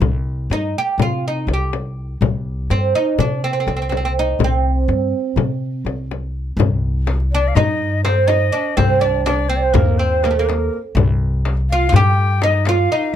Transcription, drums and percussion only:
0.02 frame drum medium
0.51 frame drum medium
0.99 frame drum medium
1.48 frame drum medium
1.73 frame drum medium
2.22 frame drum loud
2.70 frame drum medium
3.19 frame drum medium
3.68 frame drum medium
3.92 frame drum medium
4.40 frame drum medium
4.89 frame drum medium
5.37 frame drum medium
5.86 frame drum medium
6.11 frame drum medium
6.59 darbuka dum medium
6.59 frame drum medium
7.07 darbuka tek medium
7.07 frame drum medium
7.20 darbuka ka soft
7.32 darbuka ka soft
7.56 darbuka dum medium
7.56 frame drum medium
8.05 darbuka tek medium
8.05 frame drum medium
8.29 frame drum medium
8.55 darbuka ka soft
8.78 frame drum medium
8.78 darbuka dum medium
9.26 darbuka tek medium
9.26 frame drum medium
9.38 darbuka ka soft
9.52 darbuka ka soft
9.75 frame drum medium
9.75 darbuka dum medium
10.24 darbuka tek medium
10.24 frame drum medium
10.49 darbuka tek medium
10.49 frame drum medium
10.73 darbuka ka soft
10.97 frame drum loud
10.97 darbuka dum medium
11.45 darbuka tek medium
11.45 frame drum medium
11.57 darbuka ka soft
11.70 darbuka ka soft
11.92 darbuka dum medium
11.92 frame drum medium
12.42 darbuka tek medium
12.42 frame drum medium
12.66 darbuka tek medium
12.66 frame drum medium
12.91 darbuka ka soft

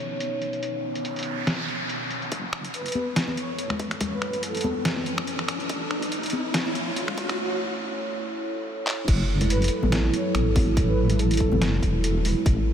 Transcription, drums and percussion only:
0.20 closed hi-hat medium
0.42 closed hi-hat soft
0.53 closed hi-hat soft
0.63 closed hi-hat medium
0.95 closed hi-hat soft
1.05 closed hi-hat medium
1.16 closed hi-hat soft
1.19 closed hi-hat medium
1.23 closed hi-hat medium
1.47 snare loud
1.47 closed hi-hat medium
1.68 closed hi-hat soft
1.90 closed hi-hat medium
2.11 closed hi-hat soft
2.22 closed hi-hat soft
2.32 kick loud
2.32 closed hi-hat medium
2.53 finger snap medium
2.65 closed hi-hat soft
2.74 closed hi-hat medium
2.86 closed hi-hat soft
2.88 closed hi-hat medium
2.92 closed hi-hat medium
2.92 high conga medium
3.16 snare loud
3.16 closed hi-hat medium
3.28 high conga medium
3.37 closed hi-hat medium
3.58 closed hi-hat medium
3.70 finger snap medium
3.70 low conga medium
3.79 kick loud
3.79 closed hi-hat medium
3.91 finger snap soft
3.91 closed hi-hat soft
4.01 kick loud
4.01 closed hi-hat medium
4.01 low conga medium
4.22 finger snap medium
4.33 closed hi-hat medium
4.43 closed hi-hat medium
4.55 closed hi-hat soft
4.57 closed hi-hat medium
4.61 closed hi-hat medium
4.61 high conga medium
4.61 low conga medium
4.85 snare loud
4.85 closed hi-hat medium
4.97 high conga medium
5.06 closed hi-hat medium
5.18 finger snap medium
5.27 closed hi-hat medium
5.39 finger snap medium
5.48 finger snap medium
5.48 closed hi-hat medium
5.60 closed hi-hat soft
5.69 kick loud
5.69 closed hi-hat medium
5.91 finger snap medium
6.02 closed hi-hat medium
6.12 closed hi-hat medium
6.23 closed hi-hat medium
6.26 closed hi-hat medium
6.30 closed hi-hat medium
6.30 high conga loud
6.54 snare loud
6.54 closed hi-hat medium
6.66 high conga medium
6.75 closed hi-hat medium
6.96 closed hi-hat medium
7.08 finger snap medium
7.08 low conga medium
7.18 kick loud
7.18 closed hi-hat medium
7.29 finger snap medium
7.29 closed hi-hat soft
8.87 clap medium
9.08 kick loud
9.08 closed hi-hat medium
9.08 crash loud
9.41 closed hi-hat medium
9.41 low conga medium
9.50 closed hi-hat medium
9.62 closed hi-hat soft
9.64 closed hi-hat medium
9.68 closed hi-hat medium
9.83 high conga medium
9.83 low conga loud
9.92 snare loud
9.92 closed hi-hat medium
10.14 closed hi-hat medium
10.35 finger snap medium
10.35 closed hi-hat medium
10.35 high conga medium
10.56 kick loud
10.56 open hi-hat loud
10.56 high conga medium
10.56 low conga medium
10.77 kick loud
10.77 closed hi-hat medium
11.10 closed hi-hat medium
11.10 low conga medium
11.19 closed hi-hat medium
11.31 closed hi-hat medium
11.34 closed hi-hat medium
11.37 kick medium
11.37 closed hi-hat medium
11.52 high conga loud
11.52 low conga medium
11.62 snare loud
11.62 closed hi-hat medium
11.83 kick medium
11.83 closed hi-hat medium
12.04 closed hi-hat medium
12.25 open hi-hat medium
12.25 low conga medium
12.46 kick loud
12.46 closed hi-hat medium

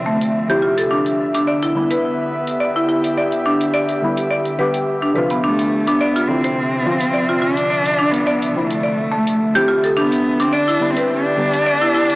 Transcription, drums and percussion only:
0.21 open hi-hat medium
0.78 open hi-hat medium
1.06 open hi-hat soft
1.34 open hi-hat soft
1.62 open hi-hat soft
1.91 open hi-hat soft
2.47 open hi-hat medium
3.04 open hi-hat soft
3.32 open hi-hat soft
3.61 open hi-hat soft
3.89 open hi-hat soft
4.17 open hi-hat soft
4.45 open hi-hat soft
4.74 open hi-hat soft
5.30 open hi-hat soft
5.59 open hi-hat soft
5.87 open hi-hat soft
6.16 open hi-hat soft
6.44 open hi-hat soft
7.00 open hi-hat soft
7.57 open hi-hat soft
7.85 open hi-hat soft
8.14 open hi-hat soft
8.42 open hi-hat soft
8.71 open hi-hat soft
9.27 open hi-hat soft
9.84 open hi-hat soft
10.12 open hi-hat soft
10.40 open hi-hat medium
10.69 open hi-hat soft
10.97 open hi-hat soft
11.53 open hi-hat medium
12.10 open hi-hat medium

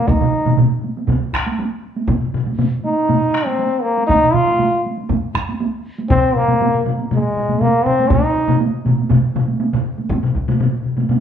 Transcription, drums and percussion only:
0.08 taiko loud
0.08 taiko high medium
0.21 taiko low-mid medium
0.21 taiko mid medium
0.46 taiko low-mid medium
0.46 taiko mid medium
0.46 taiko high medium
0.58 taiko low-mid medium
0.58 taiko mid medium
0.58 taiko high medium
0.84 taiko high soft
0.97 taiko high medium
1.08 taiko medium
1.08 taiko low-mid medium
1.08 taiko mid medium
1.08 taiko high medium
1.33 taiko rim medium
1.33 taiko medium
1.46 taiko high medium
1.59 taiko high medium
1.97 taiko high medium
2.08 taiko medium
2.08 taiko low-mid medium
2.08 taiko high medium
2.21 taiko low-mid medium
2.34 taiko low-mid medium
2.46 taiko high medium
2.59 taiko low-mid medium
2.59 taiko high medium
2.84 taiko high soft
3.09 taiko low-mid loud
3.09 taiko high medium
3.34 taiko rim medium
3.46 taiko high medium
3.59 taiko high medium
3.98 taiko high medium
4.09 taiko medium
4.09 taiko mid medium
4.09 taiko high medium
4.23 taiko mid medium
4.34 taiko mid medium
4.48 taiko high medium
4.59 taiko mid medium
4.59 taiko high medium
4.86 taiko high soft
4.97 taiko high medium
5.09 taiko medium
5.09 taiko mid loud
5.09 taiko high medium
5.35 taiko rim medium
5.35 taiko medium
5.49 taiko high medium
5.60 taiko high medium
5.98 taiko high medium
6.10 taiko loud
6.10 taiko low-mid loud
6.10 taiko high medium
6.35 taiko low-mid medium
6.48 taiko low-mid medium
6.48 taiko high medium
6.62 taiko low-mid medium
6.62 taiko high medium
6.75 taiko low-mid medium
6.86 taiko low-mid loud
6.86 taiko high soft
6.99 taiko high medium
7.11 taiko low-mid medium
7.11 taiko high medium
7.36 taiko low-mid medium
7.49 taiko low-mid medium
7.49 taiko high medium
7.61 taiko low-mid medium
7.61 taiko high medium
7.86 taiko low-mid loud
7.99 taiko high medium
8.10 taiko loud
8.10 taiko low-mid loud
8.10 taiko mid medium
8.10 taiko high medium
8.48 taiko low-mid loud
8.48 taiko mid loud
8.48 taiko high medium
8.61 taiko high medium
8.85 taiko low-mid medium
8.85 taiko mid medium
8.85 taiko high medium
8.98 taiko high medium
9.09 taiko medium
9.09 taiko low-mid loud
9.09 taiko mid medium
9.09 taiko high medium
9.35 taiko low-mid medium
9.35 taiko mid medium
9.48 taiko high medium
9.60 taiko high medium
9.73 taiko low-mid medium
9.73 taiko mid loud
9.98 taiko high soft
10.10 taiko medium
10.10 taiko high medium
10.23 taiko low-mid medium
10.35 taiko medium
10.48 taiko low-mid loud
10.48 taiko high medium
10.60 taiko low-mid loud
10.60 taiko high medium
10.84 taiko low-mid medium
10.97 taiko low-mid medium
10.97 taiko high medium
11.09 taiko low-mid medium
11.09 taiko high medium

